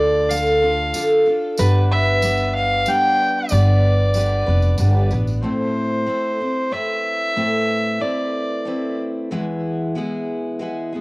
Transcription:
0.00 0.91 D2 loud
0.00 0.28 D3 medium
0.00 0.30 D4 medium
0.00 0.31 F4 medium
0.00 0.31 A4 medium
0.00 1.55 A4 medium
0.00 0.31 D5 medium
0.29 0.62 D3 medium
0.29 0.63 D4 medium
0.29 0.62 F4 medium
0.29 0.61 A4 medium
0.29 1.26 F5 medium
0.29 tambourine medium
0.47 tambourine soft
0.62 0.94 D4 soft
0.62 0.94 F4 soft
0.62 0.94 A4 soft
0.93 1.26 D3 medium
0.93 1.27 D4 medium
0.93 1.26 F4 medium
0.93 1.25 A4 medium
0.93 tambourine medium
1.26 1.58 D4 soft
1.26 1.59 F4 soft
1.26 1.58 A4 medium
1.58 2.83 G1 medium
1.58 2.21 G3 medium
1.58 2.24 B3 medium
1.58 2.22 D4 medium
1.58 2.25 B4 medium
1.58 tambourine medium
1.92 2.51 E5 medium
2.22 2.86 G3 medium
2.22 2.88 B3 medium
2.22 2.87 D4 medium
2.22 2.89 B4 medium
2.22 tambourine medium
2.37 tambourine soft
2.55 2.90 F5 loud
2.86 3.50 G3 medium
2.86 3.51 B3 medium
2.86 3.50 D4 medium
2.86 3.53 B4 medium
2.86 3.52 G5 loud
2.86 tambourine medium
3.49 4.44 G1 loud
3.49 4.13 G3 medium
3.49 4.15 B3 medium
3.49 4.14 D4 medium
3.49 5.12 D5 medium
3.49 tambourine medium
3.53 4.16 B4 medium
4.14 4.47 G3 medium
4.14 4.47 B3 medium
4.14 4.47 D4 medium
4.14 4.45 B4 medium
4.14 tambourine medium
4.46 4.77 F1 medium
4.46 4.79 B3 medium
4.46 4.78 D4 soft
4.46 4.79 B4 medium
4.62 tambourine soft
4.78 5.09 G1 medium
4.78 5.11 G3 medium
4.78 5.11 B3 medium
4.78 5.11 D4 medium
4.78 5.09 B4 medium
4.78 tambourine medium
5.11 5.41 A1 medium
5.11 5.44 B3 soft
5.11 5.43 D4 soft
5.11 5.43 B4 medium
5.11 tambourine soft
5.27 tambourine soft
5.43 6.08 A2 medium
5.43 6.05 A3 medium
5.43 6.06 C4 medium
5.43 6.09 E4 medium
5.43 6.74 C5 medium
6.07 6.40 A3 soft
6.07 6.40 C4 medium
6.07 6.39 E4 medium
6.41 6.71 C4 soft
6.41 6.72 E4 soft
6.71 7.35 A3 soft
6.71 7.36 C4 soft
6.71 7.37 E4 medium
6.71 7.38 B4 medium
6.71 8.03 E5 medium
7.36 8.01 A2 medium
7.36 7.99 A3 medium
7.36 8.00 C4 medium
7.36 8.01 E4 medium
7.36 8.02 B4 medium
8.00 8.64 A3 medium
8.00 8.65 C4 medium
8.00 8.67 E4 medium
8.00 8.68 B4 medium
8.00 8.98 D5 medium
8.65 9.30 A3 soft
8.65 9.31 C4 medium
8.65 9.32 E4 medium
8.65 9.33 B4 medium
9.31 9.96 E2 medium
9.31 11.01 E3 medium
9.31 9.94 G#3 medium
9.31 9.96 B3 medium
9.31 9.97 E4 medium
9.31 9.97 G#4 medium
9.95 10.58 G#3 medium
9.95 10.60 B3 medium
9.95 10.61 E4 medium
9.95 10.61 G#4 medium
10.59 10.92 G#3 medium
10.59 10.93 B3 medium
10.59 10.93 E4 medium
10.59 10.91 G#4 medium
10.92 11.01 G#3 soft
10.92 11.01 B3 soft
10.92 11.01 E4 soft
10.92 11.01 G#4 soft

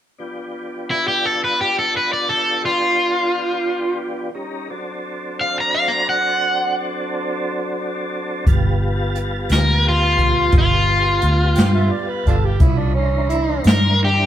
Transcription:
0.18 4.30 F3 medium
0.18 4.29 B3 medium
0.18 4.29 D4 soft
0.18 4.30 G4 soft
0.91 1.06 E4 medium
1.08 1.25 G4 medium
1.25 1.40 A4 medium
1.44 1.58 B4 medium
1.61 1.75 G4 medium
1.79 1.93 A4 medium
1.97 2.11 B4 medium
2.13 2.27 D5 medium
2.29 2.61 A4 medium
2.65 3.97 F4 medium
4.34 4.68 G3 soft
4.34 4.68 C#4 soft
4.34 4.68 D#4 medium
4.34 4.68 A#4 soft
4.70 8.45 F#3 medium
4.70 8.45 C4 medium
4.70 8.45 D4 medium
4.70 8.45 A4 medium
5.41 5.55 F5 medium
5.60 5.74 A#5 medium
5.75 5.90 F5 medium
5.88 6.05 A#5 medium
6.09 6.75 F#5 medium
8.47 9.46 G1 medium
8.47 12.57 G3 medium
8.47 12.57 B3 medium
8.47 12.57 F4 medium
8.47 12.57 A5 medium
8.47 kick medium
8.47 closed hi-hat medium
9.15 closed hi-hat soft
9.49 10.50 D2 medium
9.49 9.85 A#4 medium
9.49 snare medium
9.49 closed hi-hat medium
9.89 10.54 F4 medium
10.18 kick medium
10.18 closed hi-hat soft
10.52 11.18 G1 medium
10.52 kick loud
10.52 closed hi-hat medium
10.58 11.90 F4 medium
11.22 11.55 D2 medium
11.22 closed hi-hat medium
11.55 11.89 G2 medium
11.55 11.73 G5 medium
11.55 snare loud
11.55 closed hi-hat medium
11.74 11.92 E5 medium
11.91 12.11 D5 medium
12.09 12.25 B4 medium
12.25 12.57 G1 medium
12.25 12.36 D4 medium
12.25 12.34 F4 medium
12.25 12.47 A4 medium
12.25 kick medium
12.25 closed hi-hat medium
12.45 12.63 G4 medium
12.60 13.60 C2 medium
12.60 12.96 F3 medium
12.60 12.96 C#4 soft
12.60 12.96 D#4 medium
12.60 12.80 E4 medium
12.60 12.96 B4 medium
12.60 kick loud
12.60 closed hi-hat medium
12.79 12.94 D4 medium
12.95 14.26 D3 medium
12.95 14.26 E3 medium
12.95 13.28 C#4 medium
12.95 14.26 A#4 medium
12.95 14.26 C5 medium
13.29 13.63 E4 medium
13.29 closed hi-hat medium
13.64 14.26 G2 medium
13.64 snare loud
13.64 closed hi-hat medium
13.69 14.00 A#4 medium
14.04 14.26 G4 medium

